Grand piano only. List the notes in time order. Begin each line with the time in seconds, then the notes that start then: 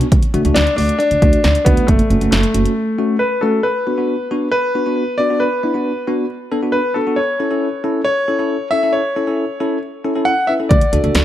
0.54 D4
0.76 D4
0.99 D4
1.65 B3
1.87 A3
2.31 A3
3.19 B4
3.41 A4
3.63 B4
4.52 B4
5.18 D5
5.40 B4
6.72 B4
6.94 A4
7.16 C#5
8.04 C#5
8.71 E5
8.93 C#5
10.25 F#5
10.47 E5
10.69 D5